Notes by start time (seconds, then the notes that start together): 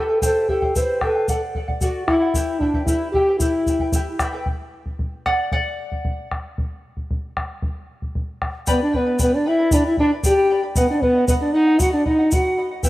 Already playing: A4
0.09 E4 B4 G5
0.22 E4 G4 A4 C5 E5 G5, bombo low, shaker
0.49 E4 G4 A4 C5 E5 G5, bombo low
0.62 E4 C5 G5, bombo low
0.76 E4 G4 B4 C5 E5 G5, bombo low, shaker
1.01 E4 A4 B4 C5 E5 G5, bombo rim, bombo low
1.15 E4 C5 G5
1.28 A4 D5 F#5, bombo low, shaker
1.55 A4 D5 F#5, bombo low
1.68 D5 F#5, bombo low
1.81 F#4 A4 D5 F#5, bombo low, shaker
2.08 E4 A4 D5 F#5, bombo rim, bombo low
2.22 D5 F#5
2.34 E4 G4 B4 E5 G5, bombo low, shaker
2.60 D4 E4 B4 E5 G5, bombo low
2.74 E4 B4 G5, bombo low
2.85 E4 G4 B4 E5 G5, bombo low, shaker
3.12 E4 G4 B4 E5, bombo low
3.16 G5
3.28 E4 B4 G5
3.38 E4 G4 B4 E5 G5, bombo low, shaker
3.66 E4 B4 E5 G5, bombo low, shaker
3.79 E4 B4 G5, bombo low
3.92 E4 G4 B4 E5 G5, bombo low, shaker
4.19 E4 B4 E5 G5, bombo rim, bombo low, shaker
4.33 E4 B4 G5
4.46 bombo low
4.86 bombo low
4.99 bombo low
5.26 D5 F#5, bombo rim, bombo low
5.52 D5 F#5, bombo low
5.92 bombo low
6.05 bombo low
6.31 bombo rim, bombo low
6.58 bombo low
6.97 bombo low
7.11 bombo low
7.37 bombo rim, bombo low
7.62 bombo low
8.02 bombo low
8.15 bombo low
8.42 bombo rim, bombo low
8.67 B3 G4 B4 D5 G5 B5, bombo low, shaker
8.83 D4 D5
8.93 B3 B4 D5 G5 B5, bombo low
9.06 B4 D5 B5
9.19 B3 G4 B4 D5 G5 B5, bombo low, shaker
9.34 D4 D5
9.45 E4 B4 D5 E5 G5 B5
9.58 B4 D5 B5
9.71 D4 G4 B4 D5 G5 B5, bombo low, shaker
9.86 E4 E5
9.97 D4 B4 D5 G5 B5, bombo low
10.12 B4 D5 B5
10.23 G4 B4 D5 G5 B5, bombo low, shaker
10.50 B4 D5 G5 B5
10.63 B4 D5 B5
10.76 B3 B4 D#5 F#5, bombo low, shaker
10.90 D4 D5
11.02 B3 B4 D#5 F#5, bombo low
11.15 D#5 F#5
11.27 B3 B4 D#5 F#5, bombo low, shaker
11.40 D4 D5
11.53 D#4 B4 D#5 F#5
11.67 D#5 F#5
11.79 F#4 B4 D#5 F#5, bombo low, shaker
11.92 D4 D5
12.05 D#4 B4 D#5 F#5, bombo low
12.19 D#5 F#5
12.31 F#4 B4 D#5 F#5, bombo low, shaker
12.58 B4 D#5 F#5
12.71 D#5 F#5
12.83 B3 E4 G4 B4 E5 G5, bombo low, shaker